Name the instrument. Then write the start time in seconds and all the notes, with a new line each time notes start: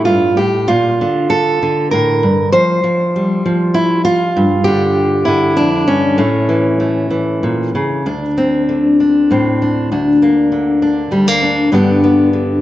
steel-string acoustic guitar
Already playing: A2 A3
0.05 G2 F4
0.37 A2 G4
0.68 A#2 F4
1.01 D3
1.30 A4
1.63 D3
1.91 A2 A#4
2.23 G2
2.52 F3 C5
2.84 F3
3.16 G3
3.46 F3
3.74 E4
4.05 F4
4.37 G2
4.64 D3 G4
5.25 D3 E4
5.57 F2 D4
5.88 G2 C#4
6.18 A2 A3
6.49 E3
6.80 A3
7.11 E3
7.43 A#2
7.75 C#3
8.06 D2 D4
8.38 C4
8.69 D3
9.00 D4
9.31 A2 C4
9.62 D4
9.92 D2 D4
10.22 A#3
10.52 D3
10.82 D4
11.11 D2 G3
11.28 A#3
11.42 D4
11.72 G2 D3 B3 D4 G4
12.04 B3
12.33 D3